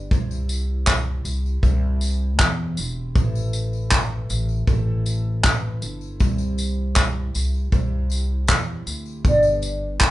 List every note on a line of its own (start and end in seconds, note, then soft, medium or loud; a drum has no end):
0.00 0.11 G3 soft
0.00 0.12 B3 soft
0.00 0.12 D4 medium
0.00 0.11 G4 medium
0.11 1.21 C2 loud
0.11 0.88 C3 medium
0.11 0.86 G3 medium
0.11 0.88 C4 medium
0.11 0.88 E4 medium
0.11 0.88 G4 medium
0.11 kick loud
0.11 tambourine medium
0.31 tambourine medium
0.49 tambourine medium
0.49 tambourine soft
0.87 1.26 C4 medium
0.87 kick loud
0.87 clap loud
0.87 tambourine medium
1.25 1.60 C2 medium
1.25 1.63 C4 soft
1.25 1.64 E4 medium
1.25 1.63 G4 soft
1.25 tambourine medium
1.25 tambourine soft
1.46 tambourine soft
1.63 2.40 C2 loud
1.63 2.40 C3 medium
1.63 2.38 G3 medium
1.63 2.39 C4 medium
1.63 2.40 E4 medium
1.63 2.41 G4 loud
1.63 kick loud
1.63 tambourine soft
2.01 tambourine medium
2.03 tambourine medium
2.39 2.75 E2 medium
2.39 2.77 G3 medium
2.39 2.77 C4 medium
2.39 2.78 E4 medium
2.39 2.76 G4 medium
2.39 kick loud
2.39 clap loud
2.39 tambourine medium
2.77 3.13 E1 medium
2.77 3.14 C4 soft
2.77 3.15 E4 soft
2.77 3.15 G4 medium
2.77 tambourine medium
3.15 4.26 A1 loud
3.15 3.91 A2 medium
3.15 3.91 E3 medium
3.15 3.91 C4 medium
3.15 3.92 E4 medium
3.15 3.92 A4 medium
3.15 kick loud
3.15 tambourine medium
3.35 tambourine medium
3.53 tambourine medium
3.53 tambourine soft
3.73 tambourine soft
3.91 kick loud
3.91 clap loud
3.91 tambourine medium
4.29 4.65 A1 medium
4.29 tambourine soft
4.29 tambourine medium
4.49 tambourine soft
4.67 5.78 A1 loud
4.67 5.44 A2 medium
4.67 5.42 E3 medium
4.67 5.43 C4 medium
4.67 5.45 E4 loud
4.67 5.45 A4 loud
4.67 kick loud
4.67 tambourine soft
5.06 tambourine medium
5.43 5.81 E3 medium
5.43 5.82 C4 medium
5.43 5.82 E4 medium
5.43 kick loud
5.43 clap loud
5.43 tambourine medium
5.82 6.17 G1 medium
5.82 6.20 C4 soft
5.82 6.20 E4 medium
5.82 6.20 A4 medium
5.82 tambourine medium
6.01 tambourine soft
6.20 7.30 C2 loud
6.20 6.96 C3 medium
6.20 6.96 G3 medium
6.20 6.96 C4 medium
6.20 6.97 E4 medium
6.20 6.99 G4 medium
6.20 kick loud
6.20 tambourine medium
6.38 tambourine medium
6.58 tambourine soft
6.58 tambourine medium
6.95 7.72 C4 medium
6.95 7.73 E4 medium
6.95 kick loud
6.95 clap loud
6.95 tambourine medium
6.99 7.74 G4 medium
7.35 7.70 C2 medium
7.35 tambourine soft
7.35 tambourine medium
7.54 tambourine soft
7.72 8.44 C2 loud
7.72 8.48 C3 medium
7.72 8.47 G3 medium
7.72 8.48 C4 medium
7.72 8.49 E4 medium
7.72 8.50 G4 loud
7.72 kick loud
7.72 tambourine soft
8.10 tambourine medium
8.12 tambourine medium
8.48 8.84 E2 medium
8.48 8.86 G3 medium
8.48 8.87 E4 medium
8.48 8.85 G4 medium
8.48 kick loud
8.48 clap loud
8.48 tambourine medium
8.86 9.21 D2 medium
8.86 9.25 C4 soft
8.86 9.25 E4 soft
8.86 9.24 G4 medium
8.86 tambourine medium
9.06 tambourine soft
9.24 10.11 G1 loud
9.24 10.00 G2 medium
9.24 10.00 D3 medium
9.24 10.00 G3 medium
9.24 10.00 B3 medium
9.24 10.01 D4 medium
9.24 10.03 G4 medium
9.24 kick loud
9.24 tambourine medium
9.43 tambourine medium
9.62 tambourine soft
9.62 tambourine medium
10.00 10.11 G3 medium
10.00 10.11 B3 medium
10.00 10.11 D4 medium
10.00 10.11 G4 medium
10.00 kick loud
10.00 clap loud
10.00 tambourine medium